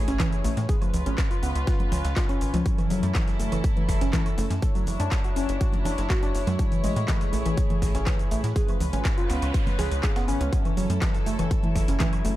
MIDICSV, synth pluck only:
0, 0, Header, 1, 2, 480
1, 0, Start_track
1, 0, Key_signature, 3, "minor"
1, 0, Tempo, 491803
1, 673, Time_signature, 4, 2, 24, 8
1, 12067, End_track
2, 0, Start_track
2, 0, Title_t, "Synth pluck"
2, 0, Program_c, 0, 84
2, 77, Note_on_c, 0, 61, 76
2, 126, Note_off_c, 0, 61, 0
2, 193, Note_on_c, 0, 52, 105
2, 225, Note_off_c, 0, 52, 0
2, 433, Note_on_c, 0, 57, 80
2, 512, Note_off_c, 0, 57, 0
2, 673, Note_on_c, 0, 68, 84
2, 726, Note_off_c, 0, 68, 0
2, 797, Note_on_c, 0, 53, 74
2, 827, Note_off_c, 0, 53, 0
2, 1037, Note_on_c, 0, 61, 76
2, 1086, Note_off_c, 0, 61, 0
2, 1277, Note_on_c, 0, 65, 76
2, 1327, Note_off_c, 0, 65, 0
2, 1394, Note_on_c, 0, 59, 74
2, 1446, Note_off_c, 0, 59, 0
2, 1634, Note_on_c, 0, 65, 86
2, 1686, Note_off_c, 0, 65, 0
2, 1873, Note_on_c, 0, 61, 76
2, 1905, Note_off_c, 0, 61, 0
2, 2114, Note_on_c, 0, 65, 109
2, 2145, Note_off_c, 0, 65, 0
2, 2237, Note_on_c, 0, 61, 104
2, 2267, Note_off_c, 0, 61, 0
2, 2477, Note_on_c, 0, 53, 105
2, 2507, Note_off_c, 0, 53, 0
2, 2717, Note_on_c, 0, 52, 101
2, 2747, Note_off_c, 0, 52, 0
2, 2834, Note_on_c, 0, 54, 99
2, 2912, Note_off_c, 0, 54, 0
2, 3074, Note_on_c, 0, 52, 102
2, 3105, Note_off_c, 0, 52, 0
2, 3314, Note_on_c, 0, 57, 74
2, 3392, Note_off_c, 0, 57, 0
2, 3437, Note_on_c, 0, 52, 82
2, 3511, Note_off_c, 0, 52, 0
2, 3678, Note_on_c, 0, 52, 104
2, 3727, Note_off_c, 0, 52, 0
2, 3918, Note_on_c, 0, 61, 81
2, 3967, Note_off_c, 0, 61, 0
2, 4034, Note_on_c, 0, 52, 106
2, 4065, Note_off_c, 0, 52, 0
2, 4274, Note_on_c, 0, 57, 78
2, 4352, Note_off_c, 0, 57, 0
2, 4514, Note_on_c, 0, 69, 85
2, 4566, Note_off_c, 0, 69, 0
2, 4637, Note_on_c, 0, 54, 79
2, 4667, Note_off_c, 0, 54, 0
2, 4877, Note_on_c, 0, 62, 77
2, 4926, Note_off_c, 0, 62, 0
2, 5117, Note_on_c, 0, 66, 75
2, 5166, Note_off_c, 0, 66, 0
2, 5234, Note_on_c, 0, 61, 79
2, 5286, Note_off_c, 0, 61, 0
2, 5474, Note_on_c, 0, 66, 86
2, 5526, Note_off_c, 0, 66, 0
2, 5714, Note_on_c, 0, 62, 77
2, 5745, Note_off_c, 0, 62, 0
2, 5954, Note_on_c, 0, 66, 104
2, 5985, Note_off_c, 0, 66, 0
2, 6077, Note_on_c, 0, 62, 101
2, 6107, Note_off_c, 0, 62, 0
2, 6317, Note_on_c, 0, 54, 102
2, 6347, Note_off_c, 0, 54, 0
2, 6557, Note_on_c, 0, 52, 100
2, 6586, Note_off_c, 0, 52, 0
2, 6673, Note_on_c, 0, 56, 100
2, 6752, Note_off_c, 0, 56, 0
2, 6913, Note_on_c, 0, 52, 104
2, 6945, Note_off_c, 0, 52, 0
2, 7153, Note_on_c, 0, 57, 75
2, 7232, Note_off_c, 0, 57, 0
2, 7277, Note_on_c, 0, 52, 82
2, 7351, Note_off_c, 0, 52, 0
2, 7517, Note_on_c, 0, 52, 104
2, 7566, Note_off_c, 0, 52, 0
2, 7757, Note_on_c, 0, 61, 78
2, 7806, Note_off_c, 0, 61, 0
2, 7873, Note_on_c, 0, 52, 108
2, 7905, Note_off_c, 0, 52, 0
2, 8113, Note_on_c, 0, 57, 81
2, 8192, Note_off_c, 0, 57, 0
2, 8353, Note_on_c, 0, 68, 82
2, 8406, Note_off_c, 0, 68, 0
2, 8477, Note_on_c, 0, 53, 78
2, 8506, Note_off_c, 0, 53, 0
2, 8717, Note_on_c, 0, 61, 75
2, 8766, Note_off_c, 0, 61, 0
2, 8957, Note_on_c, 0, 65, 77
2, 9006, Note_off_c, 0, 65, 0
2, 9073, Note_on_c, 0, 59, 76
2, 9126, Note_off_c, 0, 59, 0
2, 9313, Note_on_c, 0, 65, 84
2, 9366, Note_off_c, 0, 65, 0
2, 9553, Note_on_c, 0, 68, 101
2, 9585, Note_off_c, 0, 68, 0
2, 9793, Note_on_c, 0, 68, 85
2, 9846, Note_off_c, 0, 68, 0
2, 9917, Note_on_c, 0, 59, 104
2, 9966, Note_off_c, 0, 59, 0
2, 10033, Note_on_c, 0, 61, 108
2, 10112, Note_off_c, 0, 61, 0
2, 10157, Note_on_c, 0, 61, 100
2, 10187, Note_off_c, 0, 61, 0
2, 10397, Note_on_c, 0, 52, 100
2, 10427, Note_off_c, 0, 52, 0
2, 10514, Note_on_c, 0, 54, 103
2, 10592, Note_off_c, 0, 54, 0
2, 10754, Note_on_c, 0, 52, 108
2, 10785, Note_off_c, 0, 52, 0
2, 10993, Note_on_c, 0, 57, 74
2, 11072, Note_off_c, 0, 57, 0
2, 11117, Note_on_c, 0, 52, 81
2, 11191, Note_off_c, 0, 52, 0
2, 11357, Note_on_c, 0, 52, 107
2, 11406, Note_off_c, 0, 52, 0
2, 11597, Note_on_c, 0, 61, 77
2, 11647, Note_off_c, 0, 61, 0
2, 11713, Note_on_c, 0, 52, 105
2, 11745, Note_off_c, 0, 52, 0
2, 11953, Note_on_c, 0, 57, 77
2, 12032, Note_off_c, 0, 57, 0
2, 12067, End_track
0, 0, End_of_file